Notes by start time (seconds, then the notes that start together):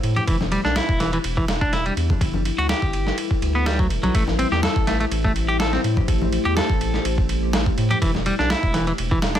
Already playing: A3 E4 C5 F#5
0.03 A2, ride
0.16 G4, ride, high conga
0.27 E1 E3 D4 G4, kick, ride
0.41 snare, high conga
0.52 G3, ride
0.64 B1 D4, snare
0.76 E4, snare, ride
0.89 E1, kick
1.00 E3, snare, ride
1.13 E3, ride
1.24 E1, ride
1.37 E3, kick
1.48 snare, ride
1.61 D4, kick
1.73 E4, snare, ride
1.86 G3, ride
1.96 E2, ride
2.10 kick, high conga
2.21 G1 G3 A4 B4, kick, ride
2.34 high conga
2.45 ride
2.58 D2 F#4
2.69 G4, snare, ride
2.82 G1, kick
2.93 ride
3.07 snare
3.18 ride
3.31 kick
3.42 D2, ride
3.55 B3
3.66 G3, snare, ride
3.79 F#3, kick
3.90 D1, ride
4.03 B1 F#3, ride, high conga
4.14 A1 A3 G4 C5, kick, ride
4.27 snare, high conga
4.39 C4, ride
4.51 E2 G4, snare
4.63 A4, snare, ride
4.76 A1, kick
4.87 A3, snare, ride
5.00 A3, ride
5.11 A1, ride
5.24 A3, kick
5.36 ride
5.48 G4
5.60 A4, snare, ride
5.73 C4, snare
5.84 A2, ride
5.97 kick, high conga
6.08 A1, kick, ride
6.22 high conga
6.33 ride
6.45 E2 G4
6.56 A4, snare, ride
6.70 A1, kick
6.81 ride
6.94 snare
7.05 A1, ride
7.18 kick
7.29 ride
7.53 snare, ride
7.66 kick
7.78 A2, ride
7.90 G4, ride, high conga
8.02 E1 E3 D4 E4 G4, kick, ride
8.15 snare, high conga
8.26 G3, ride
8.39 B1 D4, snare
8.50 E4, snare, ride
8.63 E1, kick
8.74 E3, snare, ride
8.87 E3, ride
8.98 E1, ride
9.11 E3, kick
9.22 snare, ride
9.35 D4, snare, ride